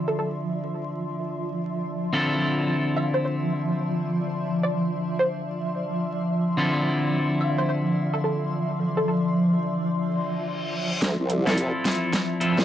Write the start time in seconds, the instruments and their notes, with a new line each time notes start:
Already playing: clean electric guitar D3 C4 E4 F4 A4, ambient pad F3 D5 E5 C6
0.08 synth pluck A4
0.19 synth pluck A4
2.13 clean electric guitar D3 C4 E4 F4 A4
2.97 synth pluck F5
3.14 synth pluck C5
3.25 synth pluck C5
4.63 synth pluck D5
5.19 synth pluck C5
6.57 clean electric guitar D3 C4 E4 F4 A4
7.41 synth pluck F5
7.58 synth pluck C5
7.69 synth pluck C5
8.14 synth pluck A4
8.24 synth pluck A4
8.97 synth pluck A4
9.08 synth pluck A4
9.91 reverse cymbal
11.02 wobble bass D2, kick, snare, closed hi-hat
11.20 wobble bass C2
11.30 closed hi-hat
11.46 clean electric guitar C4 E4 F4 A4, snare, closed hi-hat
11.58 kick, closed hi-hat
11.85 snare, closed hi-hat
11.91 closed hi-hat
11.95 closed hi-hat
12.13 kick, snare, closed hi-hat
12.40 clean electric guitar C4 E4 F4 A4, closed hi-hat
12.58 wobble bass C2, snare